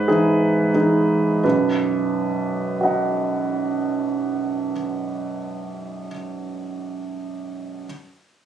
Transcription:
0.00 1.47 G#2 soft
0.00 1.44 B4 medium
0.08 0.70 E3 soft
0.08 0.70 D#4 soft
0.08 0.74 G#4 medium
0.74 1.40 E3 soft
0.74 1.40 D#4 soft
0.74 1.41 G#4 soft
1.44 4.71 B1 soft
1.44 4.71 F#2 soft
1.44 4.70 B4 soft
2.81 6.07 F#4 soft
2.81 6.10 D#5 soft
2.85 6.12 F#5 soft

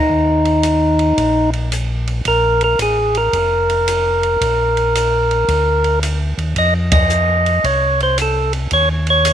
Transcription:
0.00 1.50 D#4 medium
0.09 1.13 D#2 medium
0.45 ride soft
0.63 hi-hat pedal medium
0.63 ride medium
0.99 ride soft
1.17 2.21 A#1 medium
1.17 kick soft
1.17 ride medium
1.53 ride soft
1.72 hi-hat pedal medium
1.72 ride medium
2.07 ride soft
2.25 2.75 A#1 medium
2.25 2.63 A#4 loud
2.25 kick soft
2.25 ride medium
2.61 2.79 A#4 loud
2.61 ride soft
2.79 3.29 A1 medium
2.79 3.17 G#4 medium
2.79 hi-hat pedal medium
2.79 ride medium
3.15 6.00 A#4 medium
3.15 ride soft
3.33 4.37 F1 medium
3.33 kick soft
3.33 ride medium
3.69 ride soft
3.88 hi-hat pedal medium
3.88 ride medium
4.23 ride soft
4.41 5.45 A#1 medium
4.41 kick soft
4.41 ride medium
4.77 ride soft
4.95 hi-hat pedal soft
4.95 ride medium
5.31 ride soft
5.48 6.34 D2 medium
5.48 kick soft
5.48 ride medium
5.84 ride soft
6.03 hi-hat pedal soft
6.03 ride medium
6.38 6.55 D#2 medium
6.38 ride soft
6.56 7.60 F2 medium
6.56 6.74 D#5 loud
6.56 kick soft
6.56 ride medium
6.91 7.66 D#5 medium
6.91 kick medium
6.91 ride medium
7.10 hi-hat pedal medium
7.46 ride soft
7.64 8.67 C2 medium
7.64 8.01 C#5 medium
7.64 kick soft
7.64 ride medium
8.00 8.18 C5 medium
8.00 ride soft
8.18 8.53 A4 medium
8.18 hi-hat pedal medium
8.18 ride medium
8.53 ride soft
8.71 9.33 D#2 medium
8.71 8.89 C#5 loud
8.71 kick soft
8.71 ride medium
9.07 9.33 C#5 loud
9.07 ride soft
9.25 hi-hat pedal medium
9.25 ride medium

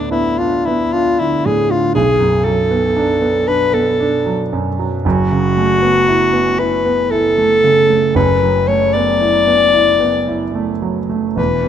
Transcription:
0.00 1.90 D2 medium
0.00 1.46 A2 soft
0.00 1.20 D3 medium
0.00 0.12 B3 soft
0.00 0.28 D4 medium
0.12 0.55 B3 soft
0.12 0.40 E4 medium
0.39 0.82 D4 medium
0.39 0.67 F4 medium
0.66 1.09 B3 soft
0.66 0.95 E4 medium
0.93 1.34 D4 medium
0.93 1.21 F4 loud
1.20 1.60 D3 soft
1.20 1.48 E4 medium
1.46 1.85 A2 medium
1.46 1.73 G#4 medium
1.70 1.95 D3 medium
1.70 1.95 F4 medium
1.95 5.01 B1 medium
1.95 2.46 G#4 loud
2.20 2.59 F#2 medium
2.45 2.85 F#3 medium
2.45 3.49 A4 medium
2.71 3.11 B3 soft
2.97 3.37 D4 medium
3.22 3.63 B3 medium
3.47 3.89 D4 medium
3.47 3.76 B4 loud
3.74 4.16 B3 medium
3.74 4.53 A4 medium
4.00 4.42 D4 medium
4.26 4.68 F#3 medium
4.53 4.95 F#2 medium
4.79 5.05 F#3 medium
5.05 8.11 F#1 medium
5.05 8.12 F#2 medium
5.05 6.61 F#4 loud
5.32 5.72 C#3 soft
5.57 5.97 A3 medium
5.82 6.22 B3 medium
6.08 6.48 E4 medium
6.33 6.74 B3 medium
6.59 7.00 E4 soft
6.59 7.12 B4 medium
6.85 7.26 B3 medium
7.11 7.53 E4 medium
7.11 8.16 A4 loud
7.38 7.79 A3 medium
7.64 8.05 C#3 medium
7.90 8.16 A3 medium
8.15 11.34 F#1 medium
8.15 11.34 F#2 medium
8.15 8.70 B4 medium
8.43 8.84 F#3 soft
8.68 9.10 A3 soft
8.68 8.95 C#5 medium
8.93 9.36 B3 soft
8.93 10.82 D5 loud
9.21 9.62 E4 medium
9.47 9.89 B3 medium
9.74 10.16 E4 soft
10.00 10.44 B3 soft
10.27 10.71 E4 medium
10.55 10.99 A3 soft
10.82 11.27 F#3 soft
11.09 11.37 A3 medium
11.36 11.68 E1 medium
11.36 11.68 E2 medium
11.36 11.68 B4 medium
11.64 11.68 B2 soft

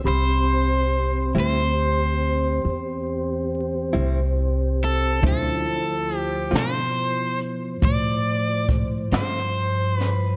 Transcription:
0.04 1.31 C2 medium
0.04 5.19 C4 soft
0.04 5.20 C4 medium
0.04 5.19 G4 soft
0.04 5.20 G4 medium
0.04 5.20 C5 medium
0.04 5.20 B5 medium
0.08 1.32 C5 medium
1.35 2.61 D2 medium
1.35 1.62 A2 soft
1.35 1.61 G3 medium
1.35 1.61 C4 medium
1.35 1.61 E4 medium
1.40 3.92 C5 medium
2.65 3.90 E2 medium
3.93 5.20 C2 medium
3.93 4.21 A2 medium
3.93 4.20 G3 medium
3.93 4.20 C4 medium
3.93 4.19 E4 medium
4.84 5.23 A4 medium
5.22 6.49 D2 medium
5.22 5.49 D3 medium
5.22 5.66 F#3 medium
5.22 5.49 A3 medium
5.22 5.49 C4 medium
5.22 5.66 C#4 medium
5.22 5.66 D4 medium
5.22 10.36 E4 soft
5.22 10.36 F4 soft
5.22 5.50 F4 medium
5.22 10.36 C5 soft
5.22 kick medium
5.22 closed hi-hat medium
5.28 6.17 A4 medium
5.65 10.36 F3 medium
5.65 10.36 C5 soft
6.10 closed hi-hat medium
6.17 6.59 G4 medium
6.51 7.79 B2 medium
6.51 6.79 D3 soft
6.51 6.79 A3 medium
6.51 6.78 C4 medium
6.51 6.78 F4 medium
6.51 closed hi-hat medium
6.55 7.38 C5 medium
6.55 snare medium
7.40 closed hi-hat medium
7.82 9.08 A2 medium
7.82 8.66 D5 medium
7.82 kick medium
7.82 closed hi-hat medium
8.69 kick medium
8.69 closed hi-hat medium
9.11 10.36 G2 medium
9.11 9.39 D3 soft
9.11 9.39 A3 medium
9.11 9.38 C4 medium
9.11 9.39 F4 medium
9.11 snare loud
9.11 closed hi-hat medium
9.16 9.97 C5 medium
9.97 10.36 B4 medium
9.97 snare soft
9.97 closed hi-hat soft

